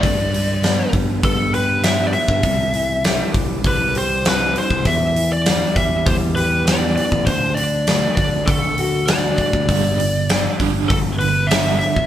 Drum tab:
HH |o-o-o-o-o-o-o-o-|o-o-o-o-o-o-o-o-|o-o-o-o-o-o-o-o-|o-o-o-o-o-o-o-o-|
SD |----o-------o---|----o-------o---|----o-------o---|----o-------o---|
BD |o-----o-o------o|o-----o-o------o|o-----o-o------o|o-----o-o-----oo|

HH |o-o-o-o-o-o-o-o-|
SD |----o-------o---|
BD |o-----o-o------o|